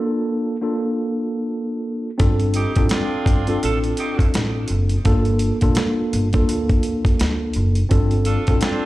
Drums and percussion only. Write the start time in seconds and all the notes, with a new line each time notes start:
2.20 kick, closed hi-hat
2.40 closed hi-hat
2.54 closed hi-hat
2.76 kick, closed hi-hat
2.89 snare, closed hi-hat
3.26 kick, closed hi-hat
3.47 closed hi-hat
3.63 closed hi-hat
3.84 closed hi-hat
3.97 closed hi-hat
4.19 kick, closed hi-hat
4.34 snare, closed hi-hat
4.68 closed hi-hat
4.89 closed hi-hat
5.05 kick, closed hi-hat
5.25 closed hi-hat
5.39 closed hi-hat
5.61 kick, closed hi-hat
5.75 snare, closed hi-hat
6.13 closed hi-hat
6.33 kick, closed hi-hat
6.49 closed hi-hat
6.69 kick, closed hi-hat
6.83 closed hi-hat
7.05 kick, closed hi-hat
7.20 snare, closed hi-hat
7.54 closed hi-hat
7.75 closed hi-hat
7.91 kick, closed hi-hat
8.11 closed hi-hat
8.25 closed hi-hat
8.47 kick, closed hi-hat
8.61 snare, closed hi-hat